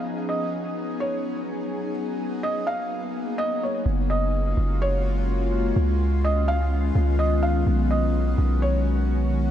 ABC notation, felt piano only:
X:1
M:4/4
L:1/8
Q:1/4=126
K:F#
V:1 name="Felt piano"
z d3 c4 | z2 d e3 d c | z d3 c4 | z2 d e3 d e |
z d3 c4 |]